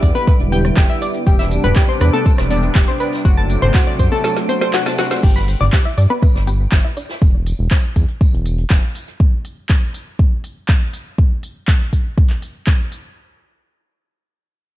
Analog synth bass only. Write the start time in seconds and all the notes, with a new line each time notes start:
0.03 E2
0.40 E1
0.77 E1
1.27 E1
1.64 E1
2.01 E2
2.38 E1
2.75 E1
3.25 F#1
3.62 F#1
3.99 F#2
5.23 G1
5.61 G1
5.98 G2
6.35 G1
6.72 G1
7.22 E1
7.59 E1
7.96 E2
8.33 E1
8.70 E1